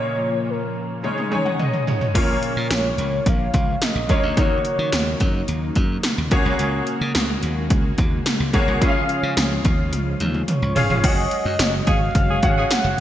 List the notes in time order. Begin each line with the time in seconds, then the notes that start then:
Already playing: A#2 C#3 F3 A#3 C#4 F4 C#5
0.50 A#4
1.03 C#3 D#3 G#3 C#4 D#4 C#5, high tom
1.18 high tom
1.31 G#3 C#4 D#4 C#5 G#5, mid tom
1.45 F#5, mid tom
1.59 D#5, mid tom
1.73 mid tom
1.87 C#5, floor tom
2.01 floor tom
2.14 A#1 A#2 C#3 F3 A#3 C#4 F4 C#5, kick, closed hi-hat, crash
2.43 closed hi-hat
2.57 A#2
2.70 A#1 C#5, snare, closed hi-hat
2.98 C#2, closed hi-hat
3.26 A#1 F5, kick, closed hi-hat
3.54 C#2, kick, closed hi-hat
3.82 D#5, snare, closed hi-hat
3.95 A#1
4.09 C#2 A#3 C#4 F4 C#5, kick, closed hi-hat
4.23 D2
4.37 D#2 D#3 F#3 A#3 D#4 F#4 C#5, kick, closed hi-hat
4.65 C#5, closed hi-hat
4.79 D#3
4.92 D#2, snare, closed hi-hat
5.20 F#2, kick, closed hi-hat
5.48 D#2, closed hi-hat
5.75 F#2, kick, closed hi-hat
6.03 snare, closed hi-hat
6.18 D#2
6.31 C#2 C#3 G#3 A#3 F#4 G#4 C#5, kick, closed hi-hat
6.46 C2
6.59 C#2, closed hi-hat
6.87 closed hi-hat
7.01 C#3
7.15 C#2, snare, closed hi-hat
7.43 D#2, closed hi-hat
7.70 C#2, kick, closed hi-hat
7.98 D#2, kick, closed hi-hat
8.26 snare, closed hi-hat
8.40 C#2
8.53 B1 A#3 F#4 G#4 C#5, kick, closed hi-hat
8.68 C2
8.81 C#2 C#3 F3 C#4 F4 G#4 E5, kick, closed hi-hat
8.89 F5
9.09 closed hi-hat
9.23 C#3
9.37 C#2, snare, closed hi-hat, tambourine
9.65 D#2, kick, closed hi-hat
9.93 C#2, closed hi-hat, high tom
10.20 D#2, closed hi-hat, mid tom
10.34 mid tom
10.48 C#5, closed hi-hat, mid tom
10.62 C#2
10.75 E1 C#4 F4 G#4 F5, floor tom, open hi-hat
10.90 F1, floor tom
11.04 F#1 C#3 F#3 G#3 C#4 F#4 G#4 D#5 F#5, kick, closed hi-hat, crash
11.31 closed hi-hat
11.45 F#2
11.59 F#1, snare, closed hi-hat, tambourine
11.87 G#1 C#4 G#4 F5, kick, closed hi-hat
12.15 F#1, kick, closed hi-hat
12.29 C#4 G#4
12.42 G#1 C#4 F#4 G#4 F#5, kick, closed hi-hat
12.57 C#4 G#4
12.71 F#5, snare, closed hi-hat, tambourine
12.84 F#1